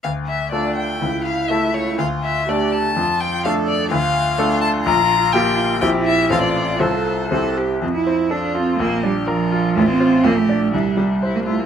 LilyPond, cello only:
\new Staff \with { instrumentName = "Cello" } { \time 2/4 \key d \minor \tempo 4 = 124 r4 d'4 | e'2 | f'4 g'4 | f'4 a'4 |
\key f \major f'2~ | f'2 | e'4 f'4 | a'4 a'8 g'8 |
c'16 e'8. d'8 c'8 | bes8 g8 f4 | a16 c'8. bes16 a8. | g4~ g16 bes16 a16 bes16 | }